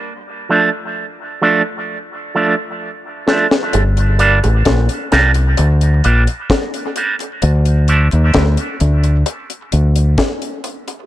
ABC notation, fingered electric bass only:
X:1
M:4/4
L:1/16
Q:1/4=65
K:Gm
V:1 name="Fingered electric bass" clef=bass
z16 | G,,,3 A,,, B,,, z C,,2 D,,2 B,,, z4 z | D,,3 E,, D,, z D,,2 z2 D,,2 z4 |]